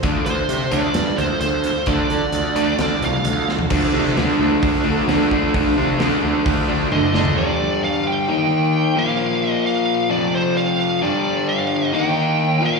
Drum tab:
CC |----------------|----------------|x---------------|----------------|
HH |x-x-x-x-x-x-x-x-|x-x-x-x-x-x-x---|----o---o---o---|o---o---o-------|
SD |--------o-----o-|--------o-----o-|---oo-------o---|----o---------o-|
T1 |----------------|----------------|----------------|------------o---|
FT |----------------|---------------o|----------------|---------------o|
BD |o---------------|o---------------|o-------o-----o-|o-------o-------|

CC |----------------|----------------|----------------|
HH |----------------|----------------|----------------|
SD |----------------|----------------|----------------|
T1 |----------------|----------------|----------------|
FT |----------------|----------------|----------------|
BD |----------------|----------------|----------------|